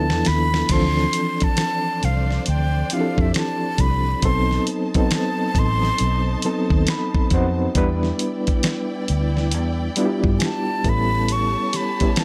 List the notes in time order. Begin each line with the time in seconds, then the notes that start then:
Already playing: D2 F3 B3 D4 E4 A4 A5
0.10 E2, snare
0.25 D#2 B5, snare, closed hi-hat
0.54 snare
0.68 D2 D4 C5 D5, kick, closed hi-hat, crash
0.72 E3 F3 C4 D4 A4 C6
0.97 snare
1.13 closed hi-hat
1.40 A5, kick, closed hi-hat
1.57 finger snap, snare, closed hi-hat
2.03 C2 F5, closed hi-hat
2.31 snare
2.46 D2 G5, closed hi-hat
2.90 F3 C4 D4 E4 G4 F5, closed hi-hat
3.01 A4
3.18 F2 E5, kick
3.34 A5, finger snap, snare, closed hi-hat
3.78 C2 B5, kick, closed hi-hat
4.22 B1 F#3 B3 C4 D#4 A4 C5 A5 C6, kick, closed hi-hat
4.51 snare
4.67 closed hi-hat
4.94 F#3 B3 C4 D#4 A4 A5, kick, closed hi-hat
5.11 finger snap, snare, closed hi-hat
5.15 A5
5.55 A1 C6, kick, closed hi-hat
5.83 snare
5.98 B1, closed hi-hat
6.42 F#3 B3 C4 D#4 A4, closed hi-hat
6.70 D#2, kick
6.87 B5, finger snap, snare, closed hi-hat
7.15 kick
7.30 F2 B3 C4 D#4 F#4 C5 F#5, kick, closed hi-hat
7.75 E2 G3 B3 D4 E4 B4 D5 G5, kick, closed hi-hat
8.03 snare
8.19 closed hi-hat
8.47 kick, closed hi-hat
8.63 finger snap, snare, closed hi-hat
9.08 D2, closed hi-hat
9.37 snare
9.52 E2, closed hi-hat
9.96 G3 B3 D4 E4 F4, closed hi-hat
10.05 G4
10.24 G2, kick
10.38 G#5, finger snap, snare, closed hi-hat
10.44 A5
10.84 A1 G3 B3 C#4 E4 G4 A4 C#5 A5, kick, closed hi-hat
10.89 B5
11.28 C#6, closed hi-hat
11.73 B5, snare, closed hi-hat
12.00 G3 B3 C#4 E4 G4, kick, closed hi-hat
12.16 A5, finger snap, snare, closed hi-hat